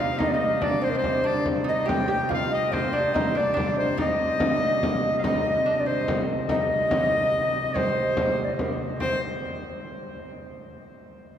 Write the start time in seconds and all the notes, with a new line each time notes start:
Already playing: C3 G3 F5
0.00 F4 F5, frame drum
0.19 D#4 D#5, frame drum
0.28 D5
0.33 D#4 D#5
0.41 frame drum
0.61 D4 D5, frame drum
0.81 C4 C5
0.90 A#4
0.95 C4 C5
1.04 frame drum
1.24 D4 D5, frame drum
1.46 frame drum
1.64 D#4, frame drum
1.69 D#5
1.86 G4 G5, frame drum
2.08 G4 G5
2.12 G5
2.29 F4 F5, frame drum
2.34 F5
2.51 D#5
2.71 C4 C5, frame drum
2.92 D4 D5
3.14 D#4 D#5, frame drum
3.35 D4 D5
3.54 D4, frame drum
3.78 C5
3.97 C3 G3 D#4 D#5, frame drum
4.19 frame drum
4.40 frame drum
4.83 frame drum
5.04 frame drum
5.18 F5
5.24 D#4 D#5, frame drum
5.45 frame drum
5.66 D4
5.80 D5
5.86 C4 C5
6.08 frame drum
6.29 frame drum
6.48 D#4 D#5, frame drum
6.70 frame drum
6.91 frame drum
7.54 frame drum
7.74 C4 C5, frame drum
8.17 frame drum
8.45 D5
8.54 C5
8.59 A#4, frame drum
8.73 C5
9.00 C4 C5, frame drum